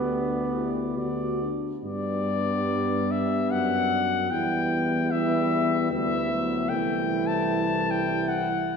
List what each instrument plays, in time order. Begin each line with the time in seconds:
Already playing: tuba D2, trombone B3, french horn section G4, cornet D5
0.11 euphonium D4
0.54 euphonium E4
0.97 tuba D2, euphonium F#4, french horn section F#4, cornet D5
1.42 euphonium D4
1.84 tuba G2, trombone G3, euphonium B3, french horn section D4, cornet D5
3.11 cornet E5
3.50 tuba F#2, cornet F#5
4.30 tuba E2, trombone G3, euphonium B3, french horn section E4, cornet G5
5.11 trombone G3, euphonium B3, french horn section E4, cornet E5
5.91 tuba D2, trombone G3, euphonium B3, french horn section E4, cornet E5
6.32 trombone F#3
6.69 tuba C2, euphonium A3, french horn section E4, cornet G5
6.73 trombone E3
7.27 cornet A5
7.91 cornet G5
8.28 cornet F#5